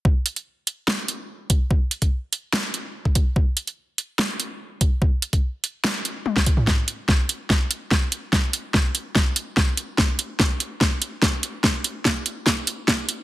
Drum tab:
HH |--xx--x---x---x-|--xx--x---x---x-|--xx--x---x---x-|--xx--x---x---x-|
SD |--------o-------|--------o-------|--------o-------|--------o----o--|
T1 |----------------|----------------|----------------|------------o---|
T2 |----------------|----------------|----------------|---------------o|
BD |o-------------o-|o--o---------oo-|o-------------o-|o--o---------oo-|

HH |--x---x---x---x-|--x---x---x---x-|--x---x---x---x-|--x---x---x---x-|
SD |o---o---o---o---|o---o---o---o---|o---o---o---o---|o---o---o---o---|
T1 |----------------|----------------|----------------|----------------|
T2 |----------------|----------------|----------------|----------------|
BD |o---o---o---o---|o---o---o---o---|o---o---o---o---|o---o---o---o---|